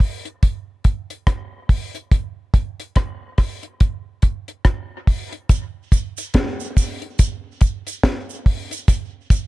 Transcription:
0.00 kick, open hi-hat
0.25 closed hi-hat
0.43 kick, closed hi-hat
0.84 kick, closed hi-hat
1.10 closed hi-hat
1.27 kick, cross-stick, closed hi-hat
1.69 kick, open hi-hat
1.95 closed hi-hat
2.11 kick, closed hi-hat
2.54 kick, closed hi-hat
2.80 closed hi-hat
2.96 kick, cross-stick, closed hi-hat
3.38 kick, cross-stick, open hi-hat
3.63 closed hi-hat
3.80 kick, closed hi-hat
4.22 kick, closed hi-hat
4.48 closed hi-hat
4.65 kick, cross-stick, closed hi-hat
5.07 kick, open hi-hat
5.33 closed hi-hat
5.49 kick, closed hi-hat, cabasa
5.92 kick, closed hi-hat, cabasa
6.17 closed hi-hat, cabasa
6.34 kick, snare, closed hi-hat
6.60 cabasa
6.77 kick, open hi-hat, cabasa
7.02 closed hi-hat
7.19 kick, closed hi-hat, cabasa
7.61 kick, closed hi-hat, cabasa
7.87 closed hi-hat, cabasa
8.03 kick, snare, closed hi-hat
8.30 cabasa
8.46 kick, open hi-hat
8.71 closed hi-hat, cabasa
8.88 kick, closed hi-hat, cabasa
9.30 kick, closed hi-hat, cabasa

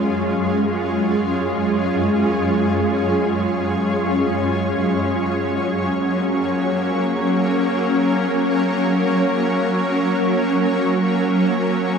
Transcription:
Already playing: F#2 F#3 G#3 C#4 F4 G#4 C#5 C#6
4.60 F#3
5.07 A#3
6.29 A#4

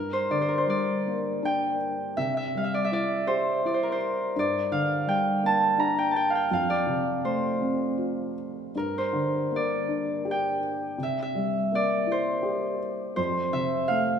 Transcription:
Already playing: G2 A#4
0.13 C5
0.31 D3 D5
0.41 C5
0.48 A#4
0.58 C5
0.67 G3 D5
1.06 A#3
1.42 D4 G5
2.17 C3 E5
2.37 E5
2.55 G3 F5
2.64 E5
2.74 D5
2.85 E5
2.92 E4 D5
3.27 G4 C5
3.65 E4 D5
3.74 C5
3.83 A#4
3.92 C5
4.36 G2 D5
4.72 D3 F5
5.07 G3 G5
5.43 A#3 A5
5.78 D4 A#5
5.99 G5
6.11 A5
6.16 G5
6.30 F5
6.35 G5
6.51 F2 F5
6.70 D5
6.87 C3
7.25 A3 C5
7.61 C4
7.97 F4
8.75 G2 A#4
8.98 C5
9.13 D3
9.51 A#3
9.56 D5
9.88 D4
10.25 G4
10.31 G5
10.98 C3
11.03 E5
11.22 E5
11.35 G3
11.72 A#3 D5
12.07 E4
12.12 C5
12.43 G4
13.16 F2 C5
13.53 C3 E5
13.88 A3 F5

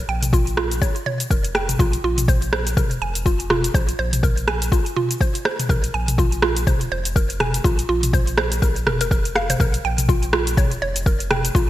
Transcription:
0.08 A#1 G5
0.23 closed hi-hat, mid tom, cabasa
0.33 F4, kick, cabasa
0.47 closed hi-hat, cabasa
0.57 F4, cross-stick
0.71 closed hi-hat, cabasa
0.82 C#5, kick, cabasa
0.96 closed hi-hat, cabasa
1.06 C#5, mid tom
1.20 closed hi-hat, cabasa
1.30 F1 A#4, kick, cabasa
1.44 closed hi-hat, cabasa
1.55 G5, cross-stick
1.69 G1, closed hi-hat, mid tom, cabasa
1.79 A#1 F4, kick, cabasa
1.93 closed hi-hat, cabasa
2.03 A#1 F4
2.18 closed hi-hat, mid tom, cabasa
2.28 C5, kick, cabasa
2.42 closed hi-hat, cabasa
2.53 C5, cross-stick
2.67 closed hi-hat, cabasa
2.77 A#4, kick, mid tom, cabasa
2.91 F1, closed hi-hat, cabasa
3.01 F1 G#5
3.15 closed hi-hat, cabasa
3.26 F4, kick, cabasa
3.40 closed hi-hat, cabasa
3.50 F4, cross-stick, mid tom
3.64 closed hi-hat, cabasa
3.74 A#1 C5, kick, cabasa
3.89 closed hi-hat, cabasa
3.99 A#1 C5
4.13 closed hi-hat, mid tom, cabasa
4.23 A#4, kick, cabasa
4.37 closed hi-hat, cabasa
4.48 G#5, cross-stick
4.62 closed hi-hat, cabasa
4.72 F4, kick, cabasa
4.86 closed hi-hat, cabasa
4.96 F4, mid tom
5.11 closed hi-hat, cabasa
5.21 C5, kick, cabasa
5.35 closed hi-hat, cabasa
5.45 C5, cross-stick
5.59 closed hi-hat, mid tom, cabasa
5.69 A#1 A#4, kick, cabasa
5.84 closed hi-hat, cabasa
5.94 A#1 G#5
6.08 closed hi-hat, mid tom, cabasa
6.18 F4, kick, cabasa
6.32 closed hi-hat, cabasa
6.42 F4, cross-stick
6.57 closed hi-hat, cabasa
6.67 C5, kick, mid tom, cabasa
6.81 F1, closed hi-hat, cabasa
6.91 F1 C5
7.05 closed hi-hat, cabasa
7.16 A#4, kick, cabasa
7.30 closed hi-hat, cabasa
7.40 G#5, cross-stick, mid tom
7.54 closed hi-hat, cabasa
7.64 A#1 F4, kick, cabasa
7.79 closed hi-hat, cabasa
7.89 A#1 F4
8.03 closed hi-hat, mid tom, cabasa
8.13 C5, kick, cabasa
8.27 closed hi-hat, cabasa
8.38 C5, cross-stick
8.52 closed hi-hat, cabasa
8.62 A#4, kick, cabasa
8.76 closed hi-hat, cabasa
8.86 F1 A#4, cross-stick, mid tom
9.01 A#4, closed hi-hat, cabasa
9.11 A#4, kick, cabasa
9.25 closed hi-hat, cabasa
9.36 F5, cross-stick
9.50 C5, closed hi-hat, mid tom, cabasa
9.60 A#1 A#4, kick, cabasa
9.74 closed hi-hat, cabasa
9.84 A#1 G5
9.98 closed hi-hat, mid tom, cabasa
10.09 F4, kick, cabasa
10.23 closed hi-hat, cabasa
10.33 F4, cross-stick
10.47 closed hi-hat, cabasa
10.57 C#5, kick, mid tom, cabasa
10.71 F1, closed hi-hat, cabasa
10.82 F1 C#5
10.96 closed hi-hat, cabasa
11.06 A#4, kick, cabasa
11.20 closed hi-hat, cabasa
11.31 G5, cross-stick, mid tom
11.45 closed hi-hat, cabasa
11.55 A#1 F4, kick, cabasa

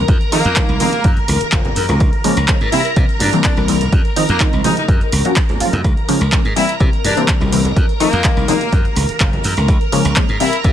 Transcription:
Already playing: A#4 A#5
0.08 F2, kick, closed hi-hat, maracas
0.21 closed hi-hat, maracas
0.32 D#3 F3 G#3 A#3 C4 D#4, open hi-hat, maracas
0.45 F2, closed hi-hat, maracas
0.56 D#3 F3 G#3 C4 D#4, kick, clap, closed hi-hat, maracas
0.69 C2, closed hi-hat, maracas
0.80 D#3 F3 G#3 A#3 C4 D#4, open hi-hat, high conga, maracas
0.93 closed hi-hat, maracas
1.04 F#2, kick, closed hi-hat, high conga, maracas
1.17 muted slap bass stroke, closed hi-hat, maracas
1.28 C#2, open hi-hat, low conga, maracas
1.41 muted slap bass stroke, closed hi-hat, maracas
1.52 F#1 F3 F#3 A#3 C#4 F4, kick, clap, closed hi-hat
1.65 closed hi-hat, low conga, maracas
1.76 F#2, open hi-hat, maracas
1.89 C#2, closed hi-hat, high conga, low conga, maracas
2.00 kick, closed hi-hat, maracas
2.13 closed hi-hat, maracas
2.24 C#3 F3 G#3 A#3 C#4, open hi-hat, maracas
2.37 C#2, closed hi-hat, maracas
2.48 C#3 F3 G#3 A#3 C#4, kick, clap, closed hi-hat
2.61 G#2, closed hi-hat, maracas
2.72 C3 E3 G3 A#3 C4 E4, open hi-hat, maracas
2.85 closed hi-hat, maracas
2.96 C3 E3 G3 A#3 C4, kick, closed hi-hat, maracas
3.09 closed hi-hat, maracas
3.20 G2 D4, open hi-hat, high conga, low conga, maracas
3.33 C3 E3 G3 A#3 C4, closed hi-hat, maracas
3.44 D4, kick, clap, closed hi-hat, maracas
3.57 C2, closed hi-hat, low conga, maracas
3.68 C3 E3 G3 A#3 C4, open hi-hat, maracas
3.81 closed hi-hat, low conga, maracas
3.92 F2, kick, closed hi-hat, maracas
4.05 closed hi-hat, maracas
4.16 D#3 F3 G#3 C4 D#4, open hi-hat, maracas
4.29 F2 A#3, closed hi-hat, maracas
4.40 D#3 F3 G#3 C4 D#4, kick, clap, closed hi-hat, maracas
4.53 C2, closed hi-hat, maracas
4.64 D#3 F3 G#3 C4 D#4, open hi-hat, high conga, maracas
4.77 D#4, closed hi-hat, maracas
4.88 F#2, kick, closed hi-hat, high conga, maracas
5.01 muted slap bass stroke, closed hi-hat, maracas
5.12 C#2, open hi-hat, low conga, maracas
5.25 F3 F#3 A#3 C#4 F#4, closed hi-hat, maracas
5.36 kick, clap, closed hi-hat
5.49 closed hi-hat, low conga, maracas
5.60 F3 F#3 A#3 C#4 F4, muted slap bass stroke, open hi-hat, maracas
5.73 F#2, closed hi-hat, high conga, low conga, maracas
5.84 C#2 A#4 A#5, kick, closed hi-hat, maracas
5.97 closed hi-hat, maracas
6.08 C#3 F3 G#3 A#3 C#4, open hi-hat, maracas
6.21 C#2, closed hi-hat, maracas
6.32 C#3 F3 G#3 A#3 C#4, kick, clap, closed hi-hat, maracas
6.45 G#2, closed hi-hat, maracas
6.56 C3 E3 G3 A#3 C4 E4, open hi-hat, maracas
6.69 closed hi-hat, maracas
6.79 C3 E3 G3 A#3 C4, kick, closed hi-hat, maracas
6.93 closed hi-hat, maracas
7.04 G2 D4, open hi-hat, high conga, low conga, maracas
7.17 C3 E3 G3 A#3 C4, closed hi-hat, maracas
7.28 kick, clap, closed hi-hat, maracas
7.41 C2, closed hi-hat, low conga, maracas
7.52 C3 E3 G3 A#3 C4, open hi-hat, maracas
7.65 closed hi-hat, low conga, maracas
7.76 F2, kick, closed hi-hat, maracas
7.89 closed hi-hat, maracas
8.00 D#3 F3 G#3 A#3 C4 D#4, open hi-hat, maracas
8.13 F2, closed hi-hat, maracas
8.24 D#3 F3 G#3 C4 D#4, kick, clap, closed hi-hat
8.37 C2, closed hi-hat, maracas
8.48 D#3 F3 G#3 A#3 C4 D#4, open hi-hat, high conga, maracas
8.61 closed hi-hat, maracas
8.72 F#2, kick, closed hi-hat, high conga, maracas
8.85 muted slap bass stroke, closed hi-hat, maracas
8.96 C#2, open hi-hat, low conga, maracas
9.09 muted slap bass stroke, closed hi-hat, maracas
9.20 F#1 F3 F#3 A#3 C#4 F4, kick, clap, closed hi-hat
9.33 closed hi-hat, low conga, maracas
9.44 F#2, open hi-hat, maracas
9.57 C#2, closed hi-hat, high conga, low conga, maracas
9.68 C#2, kick, closed hi-hat, maracas
9.81 closed hi-hat, maracas
9.92 C#3 F3 G#3 A#3 C#4, open hi-hat, maracas
10.05 C#2, closed hi-hat, maracas
10.16 C#3 F3 G#3 A#3 C#4, kick, clap, closed hi-hat
10.29 G#2, closed hi-hat, maracas
10.40 C3 E3 G3 A#3 C4 E4, open hi-hat, maracas
10.53 closed hi-hat, maracas
10.64 C3 E3 G3 A#3 C4, kick, closed hi-hat, maracas

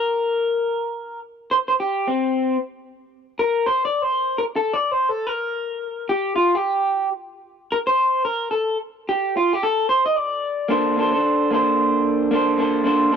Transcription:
Already playing: A#4
1.51 C5
1.68 C5
1.80 G4
2.08 C4
3.39 A#4
3.66 C5
3.85 D5
4.02 C5
4.38 A#4
4.56 A4
4.74 D5
4.92 C5
5.09 A4
5.27 A#4
6.09 G4
6.36 F4
6.55 G4
7.72 A#4
7.87 C5
8.25 A#4
8.51 A4
9.09 G4
9.37 F4
9.53 G4
9.63 A4
9.89 C5
10.06 D#5
10.16 D5
10.68 A#3 D4 A4 C5
10.96 A#3 D4 A4
11.00 C5
11.12 A4 C5
11.16 D4
11.51 A#3 D4 A4 C5
12.31 A#3 D4 A4 C5
12.58 A#3 D4 A4 C5
12.84 A#3 D4 A4 C5
13.10 A#3 D4 A4

